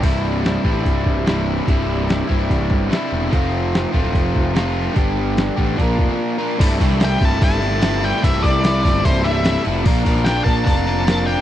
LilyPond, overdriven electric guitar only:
\new Staff \with { instrumentName = "Overdriven electric guitar" } { \clef bass \time 4/4 \key c \mixolydian \tempo 4 = 147 <c, g, c g e'>4. <c, g, c g e'>4. <c, g, c g e'>4 | <c, g, c g e'>4. <c, g, c g e'>4. <c, g, c g e'>4 | <f, c f a c' f'>4. <f, c f a c' f'>4. <f, c f a c' f'>4 | <g, d g b d' g'>4. <g, d g b d' g'>8 <bes, f bes d' f' bes'>4. <bes, f bes d' f' bes'>8 |
<c, g, c g a e'>8 <c g a e'>8 <c g a e'>8 <c, g, c g a e'>8 <c g a e'>8 <c, g, c g a e'>8 <c g a e'>8 <c g a e'>8 | <c, g, c g a e'>8 <c g a e'>8 <c g a e'>8 <c, g, c g a e'>8 <c g a e'>8 <c, g, c g a e'>8 <c g a e'>8 <c g a e'>8 | <bes, f bes d' f' bes'>8 <bes d' f' bes'>8 <bes d' f' bes'>8 <bes, f bes d' f' bes'>8 <bes d' f' bes'>8 <bes, f bes d' f' bes'>8 <bes d' f' bes'>8 <bes d' f' bes'>8 | }